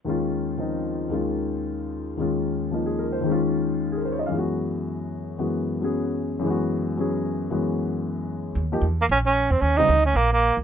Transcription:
0.05 D#2 D#3 G#3 C#4
0.09 F4
0.58 D#3 F3 C4 D#4
1.09 D#2 D#3 G#3 C#4
1.13 F4
2.17 D#2 D#3 G#3 C#4
2.21 F4
2.71 F3 A#3 D#4 F4
2.86 G#4
2.99 A#4
3.12 C5
3.21 D#2 D#3
3.26 G#3 C#4
3.32 F4
3.92 G#4
3.98 A#4
4.05 C5
4.12 C#5
4.19 D#5
4.26 F#2 F5
4.30 E3 G#3
4.35 B3 F#4
5.38 F#2 E3 G#3 B3 F#4
5.81 F#3 B3 C#4 G#4
6.39 F#2 E3
6.44 G#3 B3
6.50 F#4
6.97 F#3 B3 C#4 G#4
7.51 F#2 E3 G#3 B3 F#4
8.55 D#2
8.72 F3 A#3 D#4 G4
8.82 E2
9.01 A#3
9.09 A#1 C#4
9.26 C#4
9.50 E2 C4
9.61 D#2 C#4
9.77 C#3 G3 C4 D#4
9.89 D2
10.05 C#4
10.14 A#1 A#3
10.33 A#3
10.57 C#2

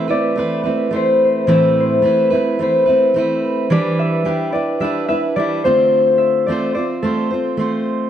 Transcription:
Already playing: E3 E5
0.08 A3 C4 E4 B4 D5
0.36 A3 C4 E4 B4
0.64 A3 C4 E4 B4
0.91 A3 C4 E4 B4
0.96 C5
1.25 C5
1.47 A2 E3 A3 C4 E4 B4
1.52 E5
1.80 C5
2.02 A3 C4 E4 B4
2.08 B4
2.30 A3 C4 E4 B4
2.35 B4
2.59 A3 C4 E4 B4 C5
2.86 A3 C4 E4 B4
3.14 A3 C4 E4
3.18 B4
3.70 E3 G3 D4 E4 B4 D5
3.99 E5
4.25 G3 D4 E4 B4 G5
4.52 D4 E4 B4 D5
4.80 G3 D4 E4 E5
4.84 B4
5.08 D4 E4 B4 E5
5.36 G3 D4 E4 D5
5.40 B4
5.64 D3 A3 C4 F4 C5
6.18 E5
6.46 A3 C4 F4 D5
6.52 C5
6.74 C4 F4 C5 D5
7.02 A3 C4 F4 A4 C5
7.30 C4 F4 C5
7.57 A3 C4 F4 C5

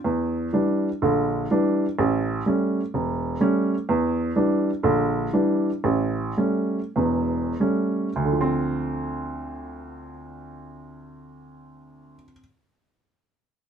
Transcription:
0.04 E2
0.53 E3 G3 D4
1.02 A#1 D3
1.51 E3 G3 D4
1.99 A1
2.46 G3 A3 C#4
2.94 E1
3.41 G3 A3 C#4
3.89 E2
4.36 E3 G3 D4
4.83 A#1 D3
5.33 E3 G3 D4
5.84 A1
6.37 G3 A3 C#4
6.96 E1 E2
7.60 G3 A3 C#4
8.16 D2
8.25 D3
8.33 F3
8.41 C4

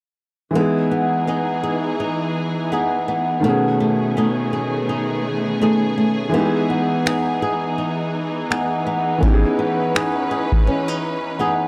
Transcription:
0.51 E3 G#3
0.55 E3 B3 D#4 G#4
0.60 G#4
0.91 B3
1.27 B3 D#4 G#4
1.63 G#4
2.00 D#4
2.72 B3 D#4 G#4
3.08 B3
3.40 B2 D#3 A3 C#4
3.44 A3 B3 C#4 G#4
3.49 G#4
3.80 A3
4.17 A3 D#4 G#4
4.53 G#4
4.89 D#4
5.62 A3 D#4 G#4
5.98 A3
6.29 E3 G#3
6.34 E3 B3 D#4
6.39 G4
6.45 G#4
6.70 B3
7.06 B3 D#4 G#4, finger snap
7.42 G#4
7.78 D#4
8.50 B3 D#4 G#4, finger snap
8.87 B3
9.18 E3 B3
9.23 E3 C#4 D#4 B4, kick
9.28 G4
9.34 G#4
9.59 B3
9.95 B3 D#4 G#4, finger snap
10.31 G#4
10.52 kick
10.67 C#4
10.88 D#4
11.39 B3 D#4 G#4

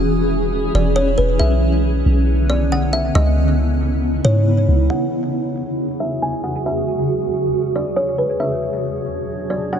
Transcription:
Already playing: E1 E3 C#4 E4 G#4 E5
0.74 E1 D5
0.96 C#5
1.18 E1 B4
1.39 B1 D3 B3 E5
2.06 B1
2.50 D5
2.72 F#5
2.93 E5
3.15 C#2 C#3 B3 D#4 E4 D#5
4.25 G#2 C#5
4.68 C#2
4.90 E2 C#3 F#4 G#4 F#5
6.00 E5
6.22 G#5
6.44 F#5
6.66 E5
7.76 D5
7.96 C#5
8.18 B4
8.40 B2 F#3 D4 C#5 E5
9.50 D5
9.73 F#5

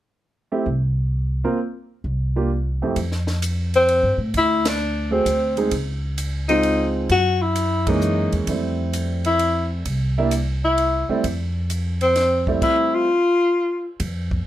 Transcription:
0.52 A3 C4 E4 G4
0.66 C2
1.44 A#3 C4 F4 A#4
2.04 C2
2.36 A#3 D4 F4 G4
2.82 F2 A3 C4 E4 G4
2.96 F2, kick, ride
3.12 snare
3.27 snare
3.42 hi-hat pedal, ride
3.74 C4, ride
3.89 ride
4.03 G2
4.18 A2
4.34 D2 E4, kick, ride
4.65 D4, snare, ride
5.11 A3 C4 F#4 G#4
5.26 D2, hi-hat pedal, ride
5.57 G#3 C4 D#4 G#4, ride
5.71 C#2, kick, ride
6.18 hi-hat pedal, ride
6.48 G#3 C4 D#4 F4, ride
6.63 ride
7.09 F#2 F#4, kick, ride
7.42 E4
7.56 hi-hat pedal, ride
7.87 E3 G#3 A#3 C#4 D#4, kick, ride
8.01 hi-hat pedal
8.32 E2, ride
8.47 F2 G3 A3 C4 E4, kick, ride
8.93 hi-hat pedal, ride
9.25 E4, ride
9.39 ride
9.85 C2, kick, ride
10.18 G3 A#3 D4 E4
10.31 hi-hat pedal, ride
10.64 E4
10.78 ride
11.09 G3 A3 C4 E4, muted upright bass stroke
11.24 F2, kick, ride
11.70 hi-hat pedal, ride
12.01 C4, ride
12.16 snare, ride
12.47 G3 A3 C4 E4, kick
12.62 E4, kick, crash
12.94 F4
14.00 F2, kick, ride
14.31 kick

